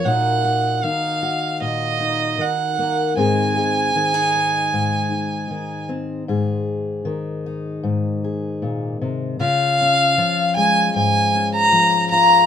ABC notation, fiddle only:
X:1
M:4/4
L:1/16
Q:1/4=77
K:Db
V:1 name="Fiddle"
g4 f4 e4 g4 | a12- a2 z2 | z16 | f6 a2 a3 b3 b2 |]